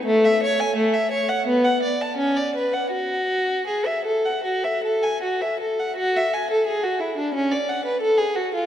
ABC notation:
X:1
M:4/4
L:1/16
Q:1/4=84
K:F#m
V:1 name="Violin"
A, e c g A, e c f B, f d a C d B f | F4 G e A f F e A g F e A f | F e g A G F E D C d f B A G F ^E |]